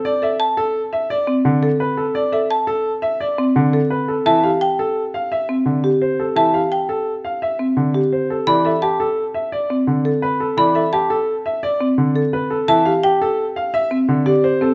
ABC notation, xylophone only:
X:1
M:6/4
L:1/8
Q:1/4=171
K:C
V:1 name="Xylophone"
z2 a z8 z | z2 a z8 z | a z g z8 z | a z g z8 z |
b z a z8 z | b z a z8 z | a z g z8 z |]